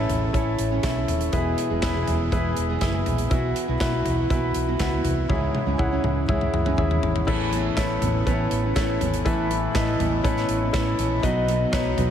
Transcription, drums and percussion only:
0.10 closed hi-hat, floor tom
0.34 kick, closed hi-hat
0.59 closed hi-hat
0.83 kick, snare, clap, closed hi-hat
1.08 closed hi-hat, floor tom
1.21 closed hi-hat
1.33 kick, closed hi-hat
1.58 closed hi-hat
1.82 kick, snare, clap, closed hi-hat
2.07 closed hi-hat, floor tom
2.32 kick, closed hi-hat
2.57 closed hi-hat
2.81 kick, snare, clap, closed hi-hat
3.06 closed hi-hat, floor tom
3.18 closed hi-hat
3.31 kick, closed hi-hat
3.56 closed hi-hat
3.81 kick, snare, clap, closed hi-hat
4.06 closed hi-hat, floor tom
4.30 kick, closed hi-hat
4.54 closed hi-hat
4.79 kick, snare, clap, closed hi-hat
5.04 closed hi-hat, floor tom
5.30 kick, high tom
5.55 high tom
5.79 kick, mid tom
6.04 mid tom
6.29 kick, mid tom
6.41 mid tom
6.54 mid tom
6.66 mid tom
6.78 kick, floor tom
6.91 floor tom
7.03 floor tom
7.16 floor tom
7.28 kick, crash
7.53 closed hi-hat
7.77 kick, snare, clap, closed hi-hat
8.02 closed hi-hat, floor tom
8.27 kick, closed hi-hat
8.51 closed hi-hat
8.76 kick, snare, clap, closed hi-hat
9.01 closed hi-hat, floor tom
9.14 closed hi-hat
9.26 kick, closed hi-hat
9.51 closed hi-hat
9.75 kick, snare, clap, closed hi-hat
10.00 closed hi-hat, floor tom
10.25 kick, closed hi-hat
10.37 snare
10.49 closed hi-hat
10.74 kick, snare, clap, closed hi-hat
10.99 closed hi-hat
11.23 kick, closed hi-hat
11.48 closed hi-hat
11.73 kick, snare, clap, closed hi-hat
11.98 closed hi-hat, floor tom

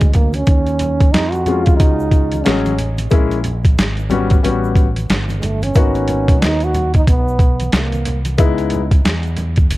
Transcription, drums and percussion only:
0.01 kick, closed hi-hat, high conga, shaker
0.13 kick, closed hi-hat, low conga, shaker
0.33 closed hi-hat, high conga, shaker
0.46 kick, closed hi-hat, shaker
0.67 closed hi-hat, shaker
0.79 closed hi-hat, low conga, shaker
1.00 kick, closed hi-hat, shaker
1.14 snare, closed hi-hat, shaker
1.32 closed hi-hat, shaker
1.46 closed hi-hat, low conga, shaker
1.66 kick, closed hi-hat, shaker
1.80 kick, closed hi-hat, shaker
2.00 shaker
2.11 kick, closed hi-hat, shaker
2.32 closed hi-hat, high conga, shaker
2.45 snare, closed hi-hat, high conga, shaker
2.65 closed hi-hat, high conga, shaker
2.78 closed hi-hat, low conga, shaker
2.98 closed hi-hat, high conga, shaker
3.10 kick, closed hi-hat, shaker
3.31 closed hi-hat, shaker
3.44 closed hi-hat, low conga, shaker
3.64 kick, closed hi-hat, shaker
3.78 snare, closed hi-hat, shaker
3.97 closed hi-hat, shaker
4.10 closed hi-hat, low conga, shaker
4.30 kick, closed hi-hat, shaker
4.44 closed hi-hat, shaker
4.64 shaker
4.76 kick, closed hi-hat, shaker
4.96 closed hi-hat, high conga, shaker
5.10 snare, closed hi-hat, high conga, shaker
5.29 closed hi-hat, high conga, shaker
5.42 closed hi-hat, low conga, shaker
5.62 closed hi-hat, high conga, shaker
5.74 kick, closed hi-hat, shaker
5.95 closed hi-hat, shaker
6.08 closed hi-hat, low conga, shaker
6.28 kick, closed hi-hat, shaker
6.42 snare, closed hi-hat, shaker
6.60 closed hi-hat, shaker
6.74 closed hi-hat, low conga, shaker
6.94 kick, closed hi-hat, shaker
7.07 kick, closed hi-hat, shaker
7.28 shaker
7.39 kick, closed hi-hat, shaker
7.60 closed hi-hat, high conga, shaker
7.72 snare, closed hi-hat, high conga, shaker
7.92 closed hi-hat, high conga, shaker
8.05 closed hi-hat, low conga, shaker
8.25 closed hi-hat, high conga, shaker
8.38 kick, closed hi-hat, shaker
8.58 closed hi-hat, shaker
8.70 closed hi-hat, low conga, shaker
8.91 kick, closed hi-hat, shaker
9.05 snare, closed hi-hat, shaker
9.23 closed hi-hat, shaker
9.37 closed hi-hat, low conga, shaker
9.56 kick, closed hi-hat, shaker
9.71 closed hi-hat, shaker

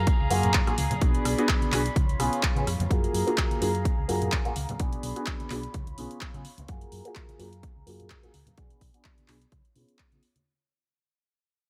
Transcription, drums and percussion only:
0.07 kick, closed hi-hat, tambourine
0.20 tambourine
0.31 open hi-hat, high conga
0.43 closed hi-hat, tambourine, low conga
0.54 kick, clap, closed hi-hat
0.67 cross-stick, closed hi-hat, tambourine, low conga
0.78 open hi-hat
0.91 closed hi-hat, tambourine, high conga, low conga
1.01 kick, closed hi-hat, tambourine
1.15 closed hi-hat, tambourine
1.25 cross-stick, open hi-hat
1.38 closed hi-hat, tambourine
1.49 kick, clap, closed hi-hat
1.62 closed hi-hat, tambourine, high conga
1.72 clap, open hi-hat
1.86 closed hi-hat, tambourine
1.96 kick, closed hi-hat
2.09 closed hi-hat, tambourine
2.20 cross-stick, open hi-hat, high conga
2.33 closed hi-hat, tambourine
2.43 kick, clap, closed hi-hat
2.56 closed hi-hat, tambourine, low conga
2.67 cross-stick, open hi-hat
2.80 closed hi-hat, tambourine, high conga
2.90 kick, closed hi-hat, tambourine
3.04 closed hi-hat, tambourine
3.15 open hi-hat
3.28 closed hi-hat, tambourine
3.38 kick, clap, closed hi-hat
3.51 closed hi-hat, tambourine, high conga
3.62 open hi-hat
3.75 closed hi-hat, tambourine
3.85 kick, closed hi-hat
3.98 tambourine
4.09 open hi-hat, high conga
4.22 closed hi-hat, tambourine, low conga
4.32 kick, clap, closed hi-hat, tambourine
4.45 closed hi-hat, tambourine, low conga
4.56 open hi-hat
4.69 closed hi-hat, tambourine, high conga, low conga
4.80 kick, closed hi-hat
4.93 closed hi-hat
5.03 open hi-hat
5.15 closed hi-hat, tambourine
5.26 kick, clap, closed hi-hat
5.40 closed hi-hat, tambourine, high conga
5.50 clap, open hi-hat
5.63 closed hi-hat, tambourine
5.74 kick, closed hi-hat
5.87 closed hi-hat, tambourine
5.98 open hi-hat, high conga
6.11 closed hi-hat, tambourine
6.21 kick, clap, closed hi-hat
6.34 closed hi-hat, tambourine, low conga
6.45 open hi-hat
6.58 closed hi-hat, tambourine, high conga
6.68 kick, closed hi-hat, tambourine
6.81 closed hi-hat
6.92 open hi-hat
7.05 closed hi-hat, tambourine
7.15 kick, clap, closed hi-hat
7.29 closed hi-hat, tambourine, high conga
7.40 open hi-hat
7.52 closed hi-hat, tambourine
7.63 kick, closed hi-hat
7.86 open hi-hat, high conga
7.99 closed hi-hat, tambourine, low conga
8.09 kick, clap, closed hi-hat, tambourine
8.23 closed hi-hat, tambourine, low conga
8.34 open hi-hat
8.46 closed hi-hat, tambourine, high conga, low conga
8.58 kick, closed hi-hat
8.70 closed hi-hat
8.81 kick, open hi-hat
8.94 closed hi-hat
9.04 kick, clap, closed hi-hat
9.17 closed hi-hat, tambourine, high conga
9.28 clap, open hi-hat
9.42 closed hi-hat
9.52 kick, closed hi-hat
9.65 closed hi-hat
9.75 open hi-hat, high conga
9.88 closed hi-hat
9.99 kick, clap, closed hi-hat
10.12 closed hi-hat, tambourine, low conga
10.23 open hi-hat
10.36 closed hi-hat, tambourine, high conga

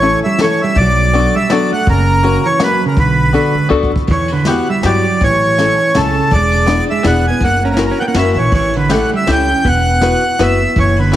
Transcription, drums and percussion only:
0.02 closed hi-hat
0.38 snare, closed hi-hat
0.75 kick, closed hi-hat
1.13 closed hi-hat
1.50 snare, closed hi-hat
1.87 kick, closed hi-hat
2.23 closed hi-hat
2.60 snare, closed hi-hat
2.97 kick, closed hi-hat
3.33 closed hi-hat
3.71 kick
3.83 kick
3.96 kick
4.07 kick, ride
4.28 ride
4.45 snare, ride
4.83 snare, ride
5.21 kick, ride
5.58 snare, ride
5.95 snare, ride
6.31 kick, ride
6.51 ride
6.67 snare, ride
7.04 snare, ride
7.41 kick, ride
7.77 snare, ride
8.14 snare, ride
8.52 kick, ride
8.73 ride
8.90 snare, ride
9.27 snare, ride
9.65 kick, ride
10.01 snare, ride
10.39 snare, ride
10.76 kick, ride
10.96 ride

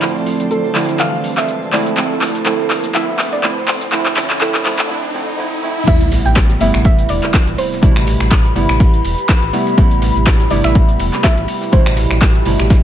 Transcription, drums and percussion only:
0.02 clap, closed hi-hat, shaker
0.16 shaker
0.26 open hi-hat
0.40 closed hi-hat, shaker
0.51 closed hi-hat, shaker
0.65 shaker
0.75 clap, open hi-hat
0.89 closed hi-hat, shaker
1.00 clap, closed hi-hat, shaker
1.14 shaker
1.24 open hi-hat
1.37 clap, closed hi-hat, shaker
1.48 closed hi-hat, shaker
1.63 shaker
1.73 clap, open hi-hat
1.86 closed hi-hat, shaker
1.97 clap, closed hi-hat, shaker
2.11 shaker
2.21 clap, open hi-hat
2.35 closed hi-hat, shaker
2.46 clap, closed hi-hat, shaker
2.60 shaker
2.70 clap, open hi-hat
2.84 closed hi-hat, shaker
2.95 clap, closed hi-hat, shaker
3.09 shaker
3.19 clap, open hi-hat
3.33 closed hi-hat, shaker
3.44 clap, closed hi-hat, shaker
3.58 shaker
3.68 clap, open hi-hat
3.81 closed hi-hat, shaker
3.92 clap, closed hi-hat, shaker
4.06 clap, shaker
4.17 clap, open hi-hat
4.30 clap, closed hi-hat, shaker
4.41 clap, closed hi-hat, shaker
4.55 clap, shaker
4.65 clap, open hi-hat
4.79 clap, closed hi-hat, shaker
5.87 kick, closed hi-hat, ride, crash, shaker
6.01 closed hi-hat, shaker
6.12 snare, open hi-hat, ride
6.25 closed hi-hat, shaker
6.35 kick, snare, clap, closed hi-hat, ride, shaker
6.49 snare, closed hi-hat, shaker
6.61 open hi-hat, ride
6.74 finger snap, closed hi-hat, shaker
6.85 kick, closed hi-hat, ride, shaker
6.99 closed hi-hat, shaker
7.09 open hi-hat, ride
7.23 clap, closed hi-hat, shaker
7.34 kick, snare, clap, closed hi-hat, ride, shaker
7.47 closed hi-hat, ride, shaker
7.58 open hi-hat, ride
7.72 snare, shaker
7.83 kick, closed hi-hat, ride, shaker
7.96 finger snap, closed hi-hat, shaker
8.07 snare, open hi-hat, ride
8.20 finger snap, closed hi-hat, shaker
8.31 kick, snare, clap, closed hi-hat, ride, shaker
8.45 closed hi-hat, ride, shaker
8.56 open hi-hat, ride
8.69 finger snap, closed hi-hat, shaker
8.80 kick, closed hi-hat, ride, shaker
8.94 closed hi-hat, shaker
9.05 open hi-hat, ride
9.18 closed hi-hat, shaker
9.29 kick, snare, clap, closed hi-hat, ride, shaker
9.42 snare, closed hi-hat, shaker
9.53 open hi-hat, ride
9.67 ride, shaker
9.78 kick, closed hi-hat, ride, shaker
9.91 closed hi-hat, shaker
10.02 snare, open hi-hat, ride
10.16 closed hi-hat, shaker
10.26 kick, snare, clap, closed hi-hat, ride, shaker
10.40 snare, closed hi-hat, shaker
10.50 open hi-hat, ride
10.64 finger snap, shaker
10.75 kick, closed hi-hat, ride, shaker
10.89 closed hi-hat, shaker
10.99 open hi-hat, ride
11.13 clap, closed hi-hat, shaker
11.23 kick, snare, clap, closed hi-hat, ride, shaker
11.37 closed hi-hat, ride, shaker
11.48 open hi-hat, ride
11.61 snare, shaker
11.73 kick, closed hi-hat, ride, shaker
11.86 finger snap, closed hi-hat, shaker
11.97 snare, open hi-hat, ride
12.11 finger snap, shaker
12.21 kick, snare, clap, closed hi-hat, ride, shaker
12.35 closed hi-hat, ride, shaker
12.45 open hi-hat, ride
12.60 finger snap, shaker
12.70 kick, snare, closed hi-hat, ride, shaker

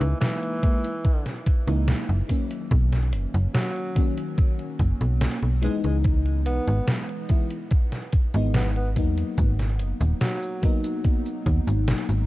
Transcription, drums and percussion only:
0.01 closed hi-hat
0.22 snare, closed hi-hat
0.43 closed hi-hat
0.63 kick, closed hi-hat
0.84 closed hi-hat
1.05 kick, closed hi-hat
1.26 snare, closed hi-hat
1.46 kick, closed hi-hat
1.68 closed hi-hat
1.88 snare, closed hi-hat
2.09 closed hi-hat
2.29 kick, closed hi-hat
2.51 closed hi-hat
2.71 kick, closed hi-hat
2.93 snare, closed hi-hat
3.13 closed hi-hat
3.34 closed hi-hat
3.55 snare, closed hi-hat
3.76 closed hi-hat
3.96 kick, closed hi-hat
4.18 closed hi-hat
4.38 kick, closed hi-hat
4.59 closed hi-hat
4.79 kick, closed hi-hat
5.01 closed hi-hat
5.21 snare, closed hi-hat
5.42 closed hi-hat
5.63 closed hi-hat
5.84 closed hi-hat
6.04 kick, closed hi-hat
6.26 closed hi-hat
6.46 closed hi-hat
6.67 closed hi-hat
6.88 snare, closed hi-hat
7.09 closed hi-hat
7.29 kick, closed hi-hat
7.51 closed hi-hat
7.71 kick, closed hi-hat
7.92 snare, closed hi-hat
8.13 kick, closed hi-hat
8.34 closed hi-hat
8.54 snare, closed hi-hat
8.76 closed hi-hat
8.96 kick, closed hi-hat
9.18 closed hi-hat
9.38 kick, closed hi-hat, cabasa
9.59 snare, closed hi-hat, cabasa
9.79 closed hi-hat
10.01 closed hi-hat, cabasa
10.21 snare, closed hi-hat, cabasa
10.43 closed hi-hat, cabasa
10.63 kick, closed hi-hat
10.84 closed hi-hat, cabasa
11.04 kick, closed hi-hat, cabasa
11.26 closed hi-hat, cabasa
11.46 kick, closed hi-hat
11.68 closed hi-hat, cabasa
11.88 snare, closed hi-hat, cabasa
12.09 closed hi-hat, cabasa

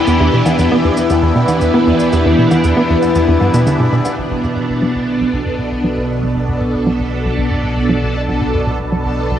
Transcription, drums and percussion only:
0.07 shaker
0.46 low woodblock, shaker
0.59 shaker
0.97 shaker
1.10 shaker
1.48 low woodblock, shaker
1.61 shaker
2.00 shaker
2.12 shaker
2.51 low woodblock, shaker
2.64 shaker
3.02 low woodblock, shaker
3.15 shaker
3.41 low woodblock
3.54 shaker
3.66 shaker
4.05 low woodblock, shaker

